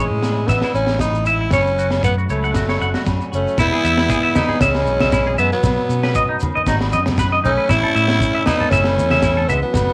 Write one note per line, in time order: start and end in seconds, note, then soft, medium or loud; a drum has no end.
0.00 0.98 A2 medium
0.00 1.50 E3 medium
0.00 0.50 G#3 medium
0.00 0.48 C#4 medium
0.00 0.23 E4 medium
0.11 0.45 A2 medium
0.22 0.74 E4 medium
0.22 snare medium
0.22 low agogo medium
0.22 shekere medium
0.48 0.61 A1 medium
0.48 0.74 B3 loud
0.48 1.49 C#4 medium
0.48 0.56 E5 medium
0.48 kick medium
0.48 snare medium
0.48 shekere medium
0.61 0.70 E4 medium
0.61 snare medium
0.61 low agogo medium
0.61 shekere soft
0.74 1.48 A1 medium
0.74 0.99 C#4 medium
0.74 1.52 E4 medium
0.74 shekere medium
0.87 snare medium
0.87 shekere soft
0.99 1.26 A2 medium
0.99 1.27 D#4 medium
0.99 kick medium
0.99 snare medium
0.99 low agogo medium
0.99 shekere medium
1.15 shekere soft
1.26 1.51 G#2 soft
1.26 1.52 E4 medium
1.26 1.34 E5 medium
1.26 shekere medium
1.41 1.47 E4 medium
1.51 1.99 F#1 loud
1.51 3.55 F#2 medium
1.51 2.00 C#4 medium
1.51 2.79 F#4 medium
1.51 1.60 C#5 medium
1.51 kick medium
1.51 snare medium
1.51 low agogo medium
1.51 shekere medium
1.66 shekere soft
1.77 3.55 F#3 medium
1.77 1.85 F#4 medium
1.77 shekere medium
1.91 snare medium
1.91 low agogo medium
1.91 shekere soft
2.03 2.27 F#2 medium
2.03 2.55 A3 medium
2.03 2.16 B3 medium
2.03 2.11 F#5 medium
2.03 kick medium
2.03 shekere loud
2.18 2.24 F#4 medium
2.18 shekere soft
2.30 2.53 C#2 medium
2.30 3.03 A3 medium
2.30 3.05 C#4 soft
2.30 2.37 C#5 medium
2.30 low agogo medium
2.30 shekere medium
2.44 2.50 F#5 medium
2.44 shekere soft
2.54 2.79 F#1 medium
2.54 3.56 A3 medium
2.54 2.63 F#4 medium
2.54 kick medium
2.54 snare medium
2.54 shekere medium
2.69 2.75 C#5 medium
2.69 snare medium
2.69 low agogo medium
2.69 shekere soft
2.80 2.94 F#1 medium
2.80 3.31 F#4 medium
2.80 2.88 F#5 medium
2.80 shekere medium
2.94 3.01 F#4 medium
2.94 snare medium
2.94 shekere soft
3.06 3.19 F#2 medium
3.06 3.55 C#4 medium
3.06 kick medium
3.06 snare medium
3.06 low agogo medium
3.06 shekere medium
3.21 shekere soft
3.32 3.45 F#1 medium
3.32 3.58 A3 medium
3.32 3.58 C#4 medium
3.32 3.55 F#4 medium
3.32 shekere medium
3.48 shekere soft
3.57 3.70 E1 medium
3.57 5.64 E2 medium
3.57 5.61 G#3 medium
3.57 4.37 B3 medium
3.57 3.66 E4 medium
3.57 4.38 E4 loud
3.57 kick medium
3.57 snare medium
3.57 low agogo medium
3.57 shekere loud
3.73 3.79 G#4 medium
3.84 4.08 E2 medium
3.84 5.38 B3 medium
3.84 3.91 E5 medium
3.84 shekere medium
3.98 4.04 E4 medium
3.98 snare medium
3.98 low agogo medium
4.09 4.17 G#4 medium
4.09 kick medium
4.09 shekere medium
4.23 4.29 E5 medium
4.35 5.61 E3 medium
4.35 4.65 B3 medium
4.35 4.62 D#4 medium
4.35 4.42 E4 medium
4.35 snare medium
4.35 high conga medium
4.35 low conga medium
4.35 low agogo medium
4.35 shekere medium
4.49 4.55 G#4 medium
4.49 low conga medium
4.60 4.87 C#2 loud
4.60 5.40 G#3 medium
4.60 5.38 C#4 loud
4.60 5.62 G#4 medium
4.60 4.69 E5 medium
4.60 kick medium
4.60 snare medium
4.60 shekere loud
4.75 snare medium
4.75 low agogo medium
4.87 5.35 B1 medium
4.87 5.61 B2 medium
4.87 shekere medium
5.00 5.07 E5 medium
5.00 snare medium
5.00 high conga medium
5.12 5.20 E4 medium
5.12 kick medium
5.12 snare medium
5.12 low agogo medium
5.12 shekere medium
5.27 5.33 G#4 medium
5.38 5.51 F#2 medium
5.38 5.52 G#3 medium
5.38 5.51 B3 medium
5.38 5.64 B3 soft
5.38 5.45 E5 medium
5.38 shekere medium
5.52 6.52 F#3 medium
5.52 6.51 B3 medium
5.64 5.76 B1 loud
5.64 6.42 B2 medium
5.64 7.68 B3 medium
5.64 kick medium
5.64 snare medium
5.64 low agogo medium
5.64 shekere loud
5.89 6.13 B2 medium
5.89 7.44 C#4 medium
5.89 shekere medium
6.03 6.10 B4 medium
6.03 snare medium
6.03 low agogo medium
6.15 6.23 D#5 medium
6.15 kick medium
6.15 shekere medium
6.29 6.35 D#4 medium
6.40 7.68 D#3 medium
6.40 high conga medium
6.40 low conga medium
6.40 low agogo medium
6.40 shekere medium
6.55 6.62 D#5 medium
6.55 low conga medium
6.66 6.94 G#1 loud
6.66 6.75 D#4 medium
6.66 7.68 F#4 medium
6.66 kick medium
6.66 snare medium
6.66 shekere medium
6.81 snare medium
6.81 low agogo medium
6.92 7.40 F#2 medium
6.92 7.67 F#2 medium
6.92 7.00 D#5 medium
6.92 shekere medium
7.06 snare medium
7.06 high conga medium
7.18 7.26 B4 medium
7.18 kick medium
7.18 snare medium
7.18 low agogo medium
7.18 shekere medium
7.32 7.39 D#5 medium
7.44 7.56 B1 medium
7.44 7.74 A3 medium
7.44 7.96 C#4 medium
7.44 7.72 C#4 loud
7.44 7.51 D#4 medium
7.44 low conga medium
7.44 shekere medium
7.57 7.64 B4 medium
7.69 7.82 A1 medium
7.69 8.98 A2 medium
7.69 9.73 A3 medium
7.69 8.48 C#4 medium
7.69 7.76 E4 medium
7.69 8.45 E4 loud
7.69 kick medium
7.69 snare medium
7.69 low agogo medium
7.69 shekere medium
7.83 7.90 A4 medium
7.95 8.19 A2 medium
7.95 9.48 C#4 medium
7.95 8.02 E5 medium
7.95 shekere medium
8.08 8.16 E4 medium
8.08 snare medium
8.08 low agogo medium
8.20 kick medium
8.20 shekere medium
8.35 8.41 E5 medium
8.46 9.72 E3 soft
8.46 8.75 B3 medium
8.46 8.71 D#4 loud
8.46 8.54 E4 medium
8.46 snare medium
8.46 high conga medium
8.46 low conga medium
8.46 low agogo medium
8.46 shekere medium
8.60 8.67 A4 medium
8.60 low conga medium
8.70 8.99 F#1 medium
8.70 9.53 A3 medium
8.70 9.50 C#4 loud
8.70 9.75 E4 medium
8.70 8.80 E5 medium
8.70 kick medium
8.70 snare medium
8.70 shekere loud
8.84 snare medium
8.84 low agogo medium
8.97 9.75 E2 medium
8.97 9.45 E2 medium
8.97 shekere medium
9.11 9.18 E5 medium
9.11 snare medium
9.11 high conga medium
9.22 9.31 E4 medium
9.22 kick medium
9.22 snare medium
9.22 low agogo medium
9.22 shekere medium
9.37 9.43 A4 medium
9.48 9.62 C#2 medium
9.48 9.64 G#3 medium
9.48 9.62 B3 medium
9.48 9.72 C#4 medium
9.48 9.56 E5 medium
9.48 low conga medium
9.48 shekere medium
9.62 9.93 F#3 medium
9.62 9.93 B3 medium
9.74 9.87 F#1 medium
9.74 9.93 F#2 medium
9.74 9.93 A3 medium
9.74 kick medium
9.74 snare medium
9.74 low agogo medium
9.74 shekere loud